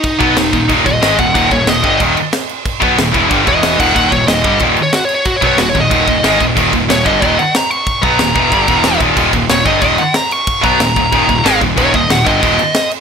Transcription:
<<
  \new Staff \with { instrumentName = "Lead electric guitar" } { \time 4/4 \tempo 4 = 184 ees'2 r8 ees''4 ges''8 | ges''8 des''8 ees''4 r2 | r2 r8 ees''4 ges''8 | ges''8 des''8 ees''4 \tuplet 3/2 { r4 des''8 ges'8 des''8 des''8 } |
\tuplet 3/2 { ges'8 des''8 des''8 ges'8 des''8 ees''8~ } ees''4. r8 | r4 des''8 ees''8 ees''8 ges''8 bes''8 des'''8~ | des'''8 bes''2. r8 | r4 des''8 ees''8 ees''8 ges''8 bes''8 des'''8~ |
des'''8 bes''2. r8 | des''8 ees''8 ges''8 ees''2 r8 | }
  \new Staff \with { instrumentName = "Distorted electric guitar" } { \clef bass \time 4/4 r8 <ces ges ces'>8 <ees, bes,>8 <ees, bes,>8 <ees, bes, ees>8 <ees, bes,>8 <aes, ees aes>8 <ees, bes,>8 | <ees, bes, ees>8 <ees, bes,>8 <ees, bes,>8 <g, d g>8 <ees, bes, ees>8 r4. | r8 <ces ges ces'>8 <ees, bes,>8 <fes, ces fes>8 <g, d g>8 <e, b, e>4 <ees, bes, ees>8 | <ees, bes, ees>8 <ees, bes,>8 <ees, bes,>8 <g, d g>8 <ees, bes, ees>8 r4. |
r8 <ces ges ces'>8 <ees, bes,>8 <ees, bes,>8 <ees, bes, ees>8 <ees, bes,>8 <aes, ees aes>8 <ees, bes,>8 | <ees, bes, ees>8 <ees, bes,>8 <ees, bes,>8 <g, d g>8 <ees, bes, ees>8 r4. | r8 <ces ges ces'>8 <ees, bes,>8 <fes, ces fes>8 <g, d g>8 <e, b, e>4 <ees, bes, ees>8 | <ees, bes, ees>8 <ees, bes,>8 <ees, bes,>8 <g, d g>8 <ees, bes, ees>8 r4. |
r8 <ces ges ces'>8 <ees, bes,>8 <ees, bes,>8 <ees, bes, ees>8 <ees, bes,>8 <aes, ees aes>8 <ees, bes,>8 | <ees, bes, ees>8 <ees, bes,>8 <ees, bes,>8 <g, d g>8 <ees, bes, ees>8 r4. | }
  \new Staff \with { instrumentName = "Picked electric bass" } { \clef bass \time 4/4 r8 ces,8 ees,,8 ees,,8 ees,,8 ees,,8 aes,,8 ees,,8 | ees,,8 ees,,8 ees,,8 g,,8 ees,,8 r4. | r8 ces,8 ees,,8 fes,,8 g,,8 e,,4 ees,,8 | ees,,8 ees,,8 ees,,8 g,,8 ees,,8 r4. |
r8 ces,8 ees,,8 ees,,8 ees,,8 ees,,8 aes,,8 ees,,8 | ees,,8 ees,,8 ees,,8 g,,8 ees,,8 r4. | r8 ces,8 ees,,8 fes,,8 g,,8 e,,4 ees,,8 | ees,,8 ees,,8 ees,,8 g,,8 ees,,8 r4. |
r8 ces,8 ees,,8 ees,,8 ees,,8 ees,,8 aes,,8 ees,,8 | ees,,8 ees,,8 ees,,8 g,,8 ees,,8 r4. | }
  \new DrumStaff \with { instrumentName = "Drums" } \drummode { \time 4/4 <cymc bd>8 <cymc bd>8 <cymc sn>8 <cymc bd>8 <cymc bd>8 <cymc bd>8 <cymc sn>8 <cymc bd>8 | <cymc bd>8 <cymc bd>8 <cymc sn>8 <cymc bd>8 <cymc bd>8 cymc8 <cymc sn>8 cymc8 | <cymc bd>8 <cymc bd>8 <cymc sn>8 <cymc bd>8 <cymc bd>8 <cymc bd>8 <cymc sn>8 <cymc bd>8 | <cymc bd>8 <cymc bd>8 <cymc sn>8 <cymc bd>8 <cymc bd>8 cymc8 <cymc sn>8 cymc8 |
<cymc bd>8 <cymc bd>8 <cymc sn>8 <cymc bd>8 <cymc bd>8 <cymc bd>8 <cymc sn>8 <cymc bd>8 | <cymc bd>8 <cymc bd>8 <cymc sn>8 <cymc bd>8 <cymc bd>8 cymc8 <cymc sn>8 cymc8 | <cymc bd>8 <cymc bd>8 <cymc sn>8 <cymc bd>8 <cymc bd>8 <cymc bd>8 <cymc sn>8 <cymc bd>8 | <cymc bd>8 <cymc bd>8 <cymc sn>8 <cymc bd>8 <cymc bd>8 cymc8 <cymc sn>8 cymc8 |
<cymc bd>8 <cymc bd>8 <cymc sn>8 <cymc bd>8 <cymc bd>8 <cymc bd>8 <cymc sn>8 <cymc bd>8 | <cymc bd>8 <cymc bd>8 <cymc sn>8 <cymc bd>8 <cymc bd>8 cymc8 <cymc sn>8 cymc8 | }
>>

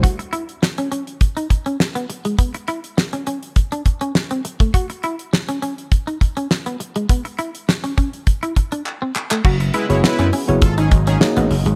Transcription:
<<
  \new Staff \with { instrumentName = "Tine electric piano" } { \time 4/4 \key gis \phrygian \tempo 4 = 102 r1 | r1 | r1 | r1 |
r8. <b e' fis' gis' cis''>8 r8 <b e' fis' gis' cis''>16 r4 <ais dis' fis' gis' cis''>8 r8 | }
  \new Staff \with { instrumentName = "Analog polysynth" } { \time 4/4 \key gis \phrygian r1 | r1 | r1 | r1 |
r8 <gis e' b'>16 <gis e' cis''>16 <gis e' b'>8 r8 <eis' a'>16 <dis cis' gis'>16 r16 <dis cis' gis'>16 r4 | }
  \new Staff \with { instrumentName = "Clean electric guitar" } { \time 4/4 \key gis \phrygian fis'16 r16 e'16 r8 cis'16 cis'16 r8 dis'16 r16 cis'16 r16 b16 r16 gis16 | b16 r16 e'16 r8 cis'16 cis'16 r8 d'16 r16 cis'16 r16 bis16 r16 a16 | fis'16 r16 e'16 r8 cis'16 cis'16 r8 dis'16 r16 cis'16 r16 b16 r16 gis16 | b16 r16 e'16 r8 cis'16 cis'16 r8 e'16 r16 d'16 r16 bis16 r16 a16 |
fis'16 r16 e'16 r8 cis'16 cis'16 r8 dis'16 r16 cis'16 r16 b16 r16 gis16 | }
  \new Staff \with { instrumentName = "Analog synth pad" } { \clef bass \time 4/4 \key gis \phrygian << { r1 | r1 | r1 | r1 |
<cis fis b e'>2 <cis fis ais dis'>2 | } \\ { r1 | r1 | r1 | r1 |
gis1 | } >> }
  \new Staff \with { instrumentName = "Slap bass" } { \clef bass \time 4/4 \key gis \phrygian r1 | r1 | r1 | r1 |
fis,,8 r16 fis,,16 r16 fis,16 r16 fis,,16 gis,,8 gis,,8 r16 a,,16 fis,,16 gis,,16 | }
  \new DrumStaff \with { instrumentName = "Drums" } \drummode { \time 4/4 <hh bd>16 hh16 hh16 hh16 sn16 hh16 hh16 hh16 <hh bd>16 hh16 <hh bd>16 hh16 sn16 hh16 hh16 hh16 | <hh bd>16 hh16 hh16 hh16 sn16 hh16 hh16 hh16 <hh bd>16 hh16 <hh bd>16 hh16 sn16 hh16 hh16 <hh bd>16 | <hh bd>16 hh16 hh16 hh16 sn16 hh16 hh16 hh16 <hh bd>16 hh16 <hh bd>16 hh16 sn16 hh16 hh16 hh16 | <hh bd>16 hh16 hh16 hh16 sn16 hh16 <hh bd>16 hh16 <hh bd>16 hh16 <hh bd>16 hh16 hc8 hc16 hc16 |
<cymc bd>16 hh16 hh16 hh16 sn16 hh16 hho16 hh16 <hh bd>16 hh16 <hh bd>16 hh16 sn16 hh16 hho16 hh16 | }
>>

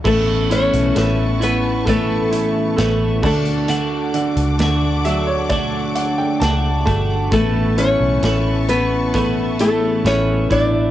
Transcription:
<<
  \new Staff \with { instrumentName = "String section" } { \time 4/4 \key a \mixolydian \tempo 4 = 66 <b' a'' cis'''>2.~ <b' a'' cis'''>8 <a' fis'' d'''>8~ | <a' fis'' d'''>1 | <b' a'' cis'''>1 | }
  \new Staff \with { instrumentName = "Nylon-string guitar" } { \time 4/4 \key a \mixolydian <a a'>8 <cis' cis''>4 <b b'>8 <a a'>4. <a a'>8~ | <a a'>8 r2. r8 | <a a'>8 <cis' cis''>4 <b b'>4 <a a'>8 <cis' cis''>8 <d' d''>8 | }
  \new Staff \with { instrumentName = "Upright piano" } { \time 4/4 \key a \mixolydian r1 | r4. e''16 cis''16 d''8 fis''16 g''16 a''8 a''8 | r1 | }
  \new Staff \with { instrumentName = "Upright piano" } { \time 4/4 \key a \mixolydian a8 e'8 a8 e'8 a8 e'8 a8 d'8 | d8 d8 d8 fis2 a8 | a8 e'8 a8 e'8 a8 e'8 a8 e'8 | }
  \new Staff \with { instrumentName = "Clean electric guitar" } { \time 4/4 \key a \mixolydian <a, e b cis' e'>4 <e b cis' e'>8 <b cis' e'>8 <a, e b cis' e'>4 <e b cis' e'>8 <a d' fis'>8 | <d a d' fis'>4 <d a d' fis'>8 <a d' fis'>8 <d a d' fis'>4 <a d' fis'>8 <a d' fis'>8 | <a, e b cis' e'>4 <e b cis' e'>4 <a, e b cis' e'>4 <e b cis' e'>8 <b e'>8 | }
  \new Staff \with { instrumentName = "Fingered electric bass" } { \clef bass \time 4/4 \key a \mixolydian a,,8. b,,16 a,,2 a,,8 d,8~ | d,8. cis,16 d,2 cis,8 g,,8 | a,,8. b,,16 a,,2 a,,8 a,,8 | }
  \new DrumStaff \with { instrumentName = "Drums" } \drummode { \time 4/4 <cymc bd>8 hh16 hh16 <hh sn>8 hh8 <hh bd>8 hh8 <hh sn>8 <cymc bd>16 hh16 | hh8 hh16 hh16 <hh sn>8 hh8 <hh bd>8 hh8 <hh sn>8 <hh bd>8 | <hh bd>8 hh8 <hh sn>8 hh8 <hh bd>8 hh8 <hh sn>8 <hh bd>8 | }
>>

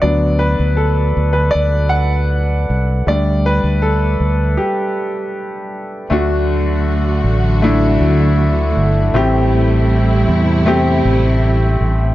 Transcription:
<<
  \new Staff \with { instrumentName = "Grand piano" } { \time 4/4 \key d \mixolydian \tempo 4 = 79 d''8 b'8 a'8. b'16 d''8 fis''4 r8 | d''8 b'8 a'4 g'4. r8 | <a d' fis'>2 <a d' e'>2 | <a c' g'>2 <a c' g'>2 | }
  \new Staff \with { instrumentName = "Grand piano" } { \clef bass \time 4/4 \key d \mixolydian <fis b d'>1 | <g a d'>4. r2 r8 | d4. r2 r8 | a,4. r2 r8 | }
  \new Staff \with { instrumentName = "String section" } { \clef bass \time 4/4 \key d \mixolydian << { r1 | r1 | <d fis fis'>1 | <c g e'>1 | } \\ { r1 | r1 | a1~ | a1 | } >> }
  \new Staff \with { instrumentName = "Fretless electric bass" } { \clef bass \time 4/4 \key d \mixolydian d,8. d,8. d,8 d,4. c,8 | d,8. d,8. d,8 r2 | d,4. a,,4 d,4 g,,8 | a,,4. e,4 a,,4 a,,8 | }
>>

